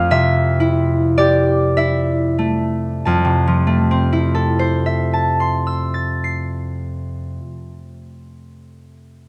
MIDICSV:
0, 0, Header, 1, 2, 480
1, 0, Start_track
1, 0, Key_signature, -1, "major"
1, 0, Tempo, 1018676
1, 281, Tempo, 1145038
1, 761, Tempo, 1295896
1, 1242, Time_signature, 3, 2, 24, 8
1, 2681, Tempo, 1263158
1, 3578, End_track
2, 0, Start_track
2, 0, Title_t, "Harp"
2, 0, Program_c, 0, 46
2, 0, Note_on_c, 0, 41, 45
2, 0, Note_on_c, 0, 57, 38
2, 0, Note_on_c, 0, 64, 40
2, 0, Note_on_c, 0, 67, 49
2, 0, Note_on_c, 0, 72, 81
2, 0, Note_on_c, 0, 74, 84
2, 0, Note_on_c, 0, 77, 68
2, 0, Note_on_c, 0, 79, 77
2, 50, Note_on_c, 0, 48, 40
2, 53, Note_on_c, 0, 76, 75
2, 277, Note_off_c, 0, 64, 0
2, 282, Note_on_c, 0, 64, 41
2, 435, Note_off_c, 0, 72, 0
2, 519, Note_off_c, 0, 74, 0
2, 523, Note_off_c, 0, 67, 0
2, 524, Note_on_c, 0, 74, 70
2, 528, Note_on_c, 0, 67, 43
2, 767, Note_off_c, 0, 76, 0
2, 770, Note_off_c, 0, 64, 0
2, 771, Note_on_c, 0, 76, 58
2, 775, Note_on_c, 0, 64, 33
2, 930, Note_off_c, 0, 74, 0
2, 995, Note_off_c, 0, 57, 0
2, 999, Note_on_c, 0, 57, 31
2, 1094, Note_off_c, 0, 79, 0
2, 1247, Note_off_c, 0, 41, 0
2, 1247, Note_on_c, 0, 81, 40
2, 1251, Note_on_c, 0, 41, 41
2, 1265, Note_off_c, 0, 48, 0
2, 1268, Note_off_c, 0, 67, 0
2, 1319, Note_on_c, 0, 48, 41
2, 1403, Note_on_c, 0, 53, 37
2, 1418, Note_off_c, 0, 77, 0
2, 1470, Note_off_c, 0, 57, 0
2, 1475, Note_on_c, 0, 57, 37
2, 1564, Note_on_c, 0, 60, 42
2, 1640, Note_off_c, 0, 64, 0
2, 1644, Note_on_c, 0, 64, 38
2, 1726, Note_on_c, 0, 69, 38
2, 1817, Note_on_c, 0, 72, 38
2, 1911, Note_off_c, 0, 76, 0
2, 1916, Note_on_c, 0, 76, 36
2, 2013, Note_off_c, 0, 81, 0
2, 2018, Note_on_c, 0, 81, 37
2, 2116, Note_on_c, 0, 84, 35
2, 2215, Note_on_c, 0, 88, 31
2, 2316, Note_on_c, 0, 93, 33
2, 2427, Note_on_c, 0, 96, 34
2, 2848, Note_off_c, 0, 41, 0
2, 2917, Note_off_c, 0, 48, 0
2, 3003, Note_off_c, 0, 53, 0
2, 3077, Note_off_c, 0, 57, 0
2, 3169, Note_off_c, 0, 60, 0
2, 3239, Note_off_c, 0, 93, 0
2, 3239, Note_off_c, 0, 96, 0
2, 3240, Note_off_c, 0, 69, 0
2, 3240, Note_off_c, 0, 72, 0
2, 3242, Note_off_c, 0, 64, 0
2, 3242, Note_off_c, 0, 88, 0
2, 3243, Note_off_c, 0, 76, 0
2, 3245, Note_off_c, 0, 84, 0
2, 3246, Note_off_c, 0, 81, 0
2, 3578, End_track
0, 0, End_of_file